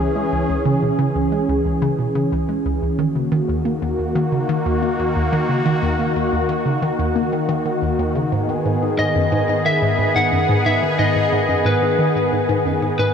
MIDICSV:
0, 0, Header, 1, 4, 480
1, 0, Start_track
1, 0, Tempo, 666667
1, 233, Time_signature, 4, 2, 24, 8
1, 9459, End_track
2, 0, Start_track
2, 0, Title_t, "Lead electric guitar"
2, 0, Program_c, 0, 29
2, 6471, Note_on_c, 0, 75, 86
2, 6951, Note_off_c, 0, 75, 0
2, 6953, Note_on_c, 0, 76, 99
2, 7313, Note_on_c, 0, 78, 96
2, 7324, Note_off_c, 0, 76, 0
2, 7648, Note_off_c, 0, 78, 0
2, 7675, Note_on_c, 0, 76, 92
2, 7898, Note_off_c, 0, 76, 0
2, 7914, Note_on_c, 0, 75, 93
2, 8396, Note_on_c, 0, 71, 70
2, 8408, Note_off_c, 0, 75, 0
2, 9086, Note_off_c, 0, 71, 0
2, 9356, Note_on_c, 0, 71, 89
2, 9459, Note_off_c, 0, 71, 0
2, 9459, End_track
3, 0, Start_track
3, 0, Title_t, "Analog synth pad"
3, 0, Program_c, 1, 89
3, 0, Note_on_c, 1, 52, 76
3, 0, Note_on_c, 1, 61, 71
3, 0, Note_on_c, 1, 68, 81
3, 2123, Note_off_c, 1, 52, 0
3, 2123, Note_off_c, 1, 61, 0
3, 2123, Note_off_c, 1, 68, 0
3, 2153, Note_on_c, 1, 51, 77
3, 2153, Note_on_c, 1, 58, 70
3, 2156, Note_on_c, 1, 66, 82
3, 5965, Note_off_c, 1, 58, 0
3, 5966, Note_off_c, 1, 66, 0
3, 5988, Note_on_c, 1, 59, 70
3, 5989, Note_on_c, 1, 68, 82
3, 9459, Note_off_c, 1, 51, 0
3, 9459, Note_off_c, 1, 59, 0
3, 9459, Note_off_c, 1, 68, 0
3, 9459, End_track
4, 0, Start_track
4, 0, Title_t, "Synth arpeggio sound"
4, 0, Program_c, 2, 84
4, 0, Note_on_c, 2, 37, 74
4, 76, Note_off_c, 2, 37, 0
4, 112, Note_on_c, 2, 56, 70
4, 168, Note_off_c, 2, 56, 0
4, 232, Note_on_c, 2, 37, 80
4, 316, Note_off_c, 2, 37, 0
4, 353, Note_on_c, 2, 37, 70
4, 409, Note_off_c, 2, 37, 0
4, 471, Note_on_c, 2, 49, 95
4, 528, Note_off_c, 2, 49, 0
4, 592, Note_on_c, 2, 47, 71
4, 648, Note_off_c, 2, 47, 0
4, 711, Note_on_c, 2, 49, 96
4, 768, Note_off_c, 2, 49, 0
4, 830, Note_on_c, 2, 37, 72
4, 915, Note_off_c, 2, 37, 0
4, 950, Note_on_c, 2, 56, 75
4, 1007, Note_off_c, 2, 56, 0
4, 1069, Note_on_c, 2, 37, 72
4, 1155, Note_off_c, 2, 37, 0
4, 1190, Note_on_c, 2, 37, 78
4, 1247, Note_off_c, 2, 37, 0
4, 1310, Note_on_c, 2, 49, 96
4, 1367, Note_off_c, 2, 49, 0
4, 1430, Note_on_c, 2, 47, 70
4, 1487, Note_off_c, 2, 47, 0
4, 1550, Note_on_c, 2, 49, 96
4, 1607, Note_off_c, 2, 49, 0
4, 1671, Note_on_c, 2, 37, 77
4, 1755, Note_off_c, 2, 37, 0
4, 1792, Note_on_c, 2, 56, 72
4, 1848, Note_off_c, 2, 56, 0
4, 1911, Note_on_c, 2, 37, 74
4, 1995, Note_off_c, 2, 37, 0
4, 2030, Note_on_c, 2, 37, 71
4, 2087, Note_off_c, 2, 37, 0
4, 2151, Note_on_c, 2, 51, 98
4, 2207, Note_off_c, 2, 51, 0
4, 2270, Note_on_c, 2, 49, 72
4, 2327, Note_off_c, 2, 49, 0
4, 2389, Note_on_c, 2, 51, 97
4, 2447, Note_off_c, 2, 51, 0
4, 2509, Note_on_c, 2, 39, 73
4, 2594, Note_off_c, 2, 39, 0
4, 2630, Note_on_c, 2, 58, 80
4, 2687, Note_off_c, 2, 58, 0
4, 2749, Note_on_c, 2, 39, 71
4, 2834, Note_off_c, 2, 39, 0
4, 2869, Note_on_c, 2, 39, 74
4, 2927, Note_off_c, 2, 39, 0
4, 2991, Note_on_c, 2, 51, 96
4, 3047, Note_off_c, 2, 51, 0
4, 3111, Note_on_c, 2, 49, 79
4, 3168, Note_off_c, 2, 49, 0
4, 3232, Note_on_c, 2, 51, 97
4, 3288, Note_off_c, 2, 51, 0
4, 3353, Note_on_c, 2, 39, 70
4, 3436, Note_off_c, 2, 39, 0
4, 3473, Note_on_c, 2, 58, 72
4, 3529, Note_off_c, 2, 58, 0
4, 3594, Note_on_c, 2, 39, 80
4, 3677, Note_off_c, 2, 39, 0
4, 3714, Note_on_c, 2, 39, 72
4, 3769, Note_off_c, 2, 39, 0
4, 3834, Note_on_c, 2, 51, 98
4, 3889, Note_off_c, 2, 51, 0
4, 3953, Note_on_c, 2, 49, 71
4, 4009, Note_off_c, 2, 49, 0
4, 4073, Note_on_c, 2, 51, 96
4, 4128, Note_off_c, 2, 51, 0
4, 4193, Note_on_c, 2, 39, 69
4, 4276, Note_off_c, 2, 39, 0
4, 4314, Note_on_c, 2, 58, 75
4, 4369, Note_off_c, 2, 58, 0
4, 4434, Note_on_c, 2, 39, 74
4, 4517, Note_off_c, 2, 39, 0
4, 4552, Note_on_c, 2, 39, 80
4, 4608, Note_off_c, 2, 39, 0
4, 4672, Note_on_c, 2, 51, 95
4, 4728, Note_off_c, 2, 51, 0
4, 4793, Note_on_c, 2, 49, 75
4, 4848, Note_off_c, 2, 49, 0
4, 4913, Note_on_c, 2, 51, 93
4, 4968, Note_off_c, 2, 51, 0
4, 5033, Note_on_c, 2, 39, 79
4, 5116, Note_off_c, 2, 39, 0
4, 5152, Note_on_c, 2, 58, 73
4, 5208, Note_off_c, 2, 58, 0
4, 5272, Note_on_c, 2, 51, 73
4, 5328, Note_off_c, 2, 51, 0
4, 5391, Note_on_c, 2, 51, 96
4, 5426, Note_off_c, 2, 51, 0
4, 5512, Note_on_c, 2, 51, 76
4, 5596, Note_off_c, 2, 51, 0
4, 5631, Note_on_c, 2, 39, 72
4, 5687, Note_off_c, 2, 39, 0
4, 5750, Note_on_c, 2, 39, 73
4, 5835, Note_off_c, 2, 39, 0
4, 5870, Note_on_c, 2, 49, 72
4, 5955, Note_off_c, 2, 49, 0
4, 5991, Note_on_c, 2, 44, 79
4, 6075, Note_off_c, 2, 44, 0
4, 6113, Note_on_c, 2, 51, 72
4, 6169, Note_off_c, 2, 51, 0
4, 6232, Note_on_c, 2, 44, 73
4, 6316, Note_off_c, 2, 44, 0
4, 6352, Note_on_c, 2, 44, 70
4, 6408, Note_off_c, 2, 44, 0
4, 6473, Note_on_c, 2, 44, 99
4, 6528, Note_off_c, 2, 44, 0
4, 6592, Note_on_c, 2, 42, 74
4, 6648, Note_off_c, 2, 42, 0
4, 6711, Note_on_c, 2, 44, 97
4, 6767, Note_off_c, 2, 44, 0
4, 6831, Note_on_c, 2, 44, 72
4, 6915, Note_off_c, 2, 44, 0
4, 6950, Note_on_c, 2, 51, 78
4, 7007, Note_off_c, 2, 51, 0
4, 7071, Note_on_c, 2, 44, 76
4, 7155, Note_off_c, 2, 44, 0
4, 7191, Note_on_c, 2, 44, 73
4, 7248, Note_off_c, 2, 44, 0
4, 7312, Note_on_c, 2, 44, 96
4, 7368, Note_off_c, 2, 44, 0
4, 7432, Note_on_c, 2, 42, 79
4, 7488, Note_off_c, 2, 42, 0
4, 7554, Note_on_c, 2, 44, 96
4, 7609, Note_off_c, 2, 44, 0
4, 7674, Note_on_c, 2, 44, 75
4, 7757, Note_off_c, 2, 44, 0
4, 7793, Note_on_c, 2, 51, 72
4, 7849, Note_off_c, 2, 51, 0
4, 7913, Note_on_c, 2, 44, 80
4, 7996, Note_off_c, 2, 44, 0
4, 8034, Note_on_c, 2, 44, 72
4, 8089, Note_off_c, 2, 44, 0
4, 8153, Note_on_c, 2, 44, 98
4, 8209, Note_off_c, 2, 44, 0
4, 8272, Note_on_c, 2, 42, 72
4, 8328, Note_off_c, 2, 42, 0
4, 8391, Note_on_c, 2, 44, 96
4, 8447, Note_off_c, 2, 44, 0
4, 8513, Note_on_c, 2, 44, 72
4, 8596, Note_off_c, 2, 44, 0
4, 8632, Note_on_c, 2, 51, 72
4, 8688, Note_off_c, 2, 51, 0
4, 8753, Note_on_c, 2, 44, 75
4, 8836, Note_off_c, 2, 44, 0
4, 8873, Note_on_c, 2, 44, 81
4, 8929, Note_off_c, 2, 44, 0
4, 8992, Note_on_c, 2, 44, 99
4, 9048, Note_off_c, 2, 44, 0
4, 9112, Note_on_c, 2, 42, 74
4, 9168, Note_off_c, 2, 42, 0
4, 9231, Note_on_c, 2, 44, 96
4, 9288, Note_off_c, 2, 44, 0
4, 9353, Note_on_c, 2, 44, 78
4, 9436, Note_off_c, 2, 44, 0
4, 9459, End_track
0, 0, End_of_file